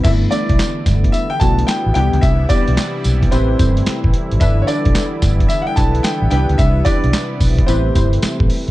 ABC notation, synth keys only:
X:1
M:4/4
L:1/16
Q:"Swing 16ths" 1/4=110
K:G
V:1 name="Synth keys"
[A,B,DE]2 [A,B,DE]6- [A,B,DE] z [A,B,DF]4 [B,DEG]2- | [B,DEG]2 [B,DEG]6 [CEGB]2 [CEGc]6 | [DEAB]2 [DEAd]6- [DEAd] z [DEAB]4 [DEGB]2- | [DEGB]2 [DEGB]6 [CEGB]2 [CEGc]6 |]